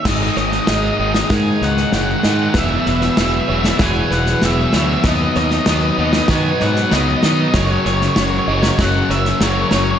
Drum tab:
CC |x---------------|----------------|----------------|----------------|
SD |o-ooo--oo-ooo-o-|o-ooo--oo-ooo-o-|o-ooo--oo-ooo-o-|o-ooo--oo-ooo-o-|
BD |o-------o-------|o-------o-------|o-------o-------|o-------o-------|